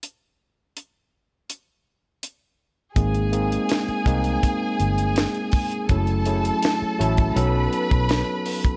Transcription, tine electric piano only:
2.96 3.27 G#3 medium
2.96 3.28 A#3 medium
2.96 3.27 C4 medium
2.96 3.28 D#4 medium
2.96 3.28 G#4 medium
3.32 3.95 G#3 medium
3.32 3.95 A#3 medium
3.32 3.95 C4 medium
3.32 3.96 D#4 medium
3.32 3.95 G#4 medium
4.06 5.31 G#3 medium
4.06 5.31 A#3 medium
4.06 5.31 C4 medium
4.06 5.31 D#4 medium
4.06 5.31 G#4 medium
5.90 6.21 F#3 medium
5.90 6.21 A3 medium
5.90 6.21 C#4 medium
5.90 6.21 E4 medium
5.90 6.22 A4 medium
6.26 6.88 F#3 medium
6.26 6.89 A3 medium
6.26 6.89 C#4 medium
6.26 6.89 E4 medium
6.26 6.33 G#4 medium
6.34 6.92 A4 medium
6.99 7.35 F#3 medium
6.99 7.36 A3 medium
6.99 7.35 C#4 medium
6.99 7.37 E4 medium
6.99 7.36 A4 medium
7.36 8.61 F#3 medium
7.36 8.61 B3 medium
7.36 8.61 C#4 medium
7.36 8.61 D#4 medium
7.36 8.62 A4 medium

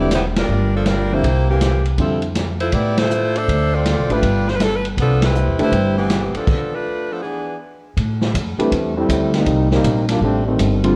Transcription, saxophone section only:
0.01 0.12 B3 medium
0.01 0.12 E4 medium
0.01 0.12 G4 medium
0.01 0.12 D5 medium
0.14 0.25 G3 medium
0.14 0.25 B3 medium
0.14 0.25 E4 medium
0.14 0.25 C5 medium
0.39 0.72 G3 medium
0.39 0.72 D4 medium
0.39 0.72 F4 medium
0.39 0.72 A#4 medium
0.75 0.87 F3 medium
0.75 0.87 A#3 medium
0.75 0.86 D4 medium
0.75 0.87 A4 medium
0.89 1.12 G3 medium
0.89 1.12 D4 medium
0.89 1.12 F4 medium
0.89 1.12 A#4 medium
1.13 1.49 A#3 medium
1.13 1.50 E4 medium
1.13 1.49 G4 medium
1.13 1.50 C5 medium
1.50 1.84 E3 medium
1.50 1.84 A#3 medium
1.50 1.84 C4 medium
1.50 1.84 G4 medium
2.01 2.22 F3 medium
2.01 2.22 C4 medium
2.01 2.23 E4 medium
2.01 2.22 A4 medium
2.61 2.73 A3 medium
2.61 2.72 E4 medium
2.61 2.73 F4 medium
2.61 2.73 C5 medium
2.73 2.98 B3 medium
2.73 2.97 E4 medium
2.73 2.98 G4 medium
2.73 2.98 D5 medium
2.98 3.35 A3 medium
2.98 3.35 E4 medium
2.98 3.36 F4 medium
2.98 3.36 C5 loud
3.37 3.73 D4 medium
3.37 3.73 A4 medium
3.37 3.73 C5 medium
3.37 3.74 E5 loud
3.74 4.11 C4 medium
3.74 4.11 F4 medium
3.74 4.11 A4 medium
3.74 4.11 D5 loud
4.12 4.49 G3 medium
4.12 4.49 D4 medium
4.12 4.49 F4 medium
4.12 4.49 B4 medium
4.50 4.55 C5 medium
4.56 4.62 B4 medium
4.63 4.74 A4 medium
4.76 4.86 B4 medium
5.00 5.22 F3 medium
5.00 5.22 B3 medium
5.00 5.22 D4 medium
5.00 5.22 A4 medium
5.25 5.61 G3 medium
5.25 5.61 C4 medium
5.25 5.61 E4 medium
5.25 5.61 B4 medium
5.62 5.96 G3 medium
5.62 5.96 E4 medium
5.62 5.96 B4 medium
5.62 5.96 C5 loud
5.98 6.33 E3 medium
5.98 6.33 B3 medium
5.98 6.32 C4 medium
5.98 6.32 G4 medium
6.36 6.73 F3 medium
6.36 6.73 B3 medium
6.36 6.73 D4 medium
6.36 6.72 A4 medium
6.75 7.11 A3 medium
6.75 7.10 D4 medium
6.75 7.11 F4 medium
6.75 7.11 B4 medium
7.11 7.23 F3 medium
7.11 7.22 B3 medium
7.11 7.22 D4 medium
7.11 7.24 A4 medium
7.22 7.57 E3 medium
7.22 7.57 B3 medium
7.22 7.58 D4 medium
7.22 7.57 G#4 medium

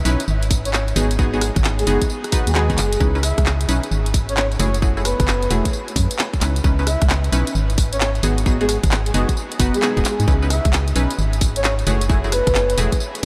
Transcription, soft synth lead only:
0.65 0.70 C#5 medium
0.73 0.83 C#5 medium
1.33 1.38 G#4 medium
1.41 1.51 G#4 medium
1.79 1.84 G#4 medium
1.87 1.96 G#4 medium
2.47 3.06 G#4 loud
3.23 3.39 E5 medium
4.29 4.34 C#5 medium
4.37 4.46 C#5 medium
4.59 4.76 C#5 medium
5.05 5.50 B4 loud
6.87 7.03 E5 medium
7.92 7.98 C#5 medium
8.00 8.10 C#5 medium
8.61 8.66 G#4 medium
8.69 8.78 G#4 medium
9.06 9.11 G#4 medium
9.14 9.23 G#4 medium
9.74 10.34 G#4 loud
10.50 10.67 E5 medium
11.56 11.61 C#5 medium
11.64 11.74 C#5 medium
11.87 12.03 C#5 medium
12.32 12.78 B4 medium

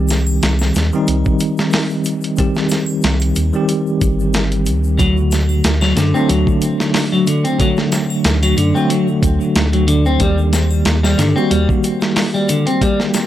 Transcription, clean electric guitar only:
4.99 5.16 F#3 medium
5.81 5.96 F#3 medium
5.96 6.12 D3 medium
6.14 6.28 C4 loud
6.29 6.46 F#3 medium
7.12 7.26 F#3 medium
7.27 7.43 D3 medium
7.44 7.59 C4 loud
7.60 7.77 F#3 medium
8.43 8.56 F#3 medium
8.57 8.73 D3 medium
8.75 8.89 C4 loud
8.90 9.07 F#3 medium
9.73 9.87 F#3 medium
9.87 10.04 D3 medium
10.06 10.20 C4 loud
10.20 10.37 G3 medium
11.03 11.18 G3 medium
11.18 11.34 D3 loud
11.36 11.50 C4 loud
11.51 11.68 G3 medium
12.34 12.48 G3 medium
12.49 12.65 D3 loud
12.67 12.81 C4 loud
12.82 12.99 G3 medium

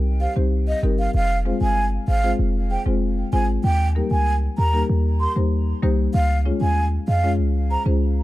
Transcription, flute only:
0.21 0.33 F5 medium
0.68 0.79 D#5 medium
0.99 1.11 F5 medium
1.15 1.38 F5 loud
1.62 1.85 G#5 medium
2.08 2.32 F5 medium
2.71 2.83 G5 medium
3.33 3.45 G#5 medium
3.64 3.88 G5 loud
4.11 4.35 G#5 medium
4.58 4.82 A#5 medium
5.21 5.32 C6 medium
6.14 6.38 F5 loud
6.61 6.85 G#5 medium
7.08 7.32 F5 medium
7.71 7.83 A#5 medium

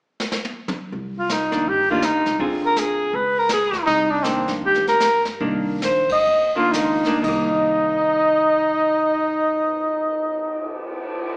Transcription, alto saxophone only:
1.19 1.33 F4 medium
1.32 1.70 D#4 medium
1.69 1.90 G4 medium
1.90 2.06 F4 medium
2.05 2.41 D#4 medium
2.65 2.80 A#4 medium
2.78 3.16 G#4 medium
3.15 3.40 B4 medium
3.39 3.51 A#4 medium
3.53 3.86 G#4 medium
4.66 4.86 G4 medium
4.88 5.24 A#4 medium
5.84 6.09 C5 medium
6.12 6.53 D#5 medium
7.25 10.82 D#5 medium

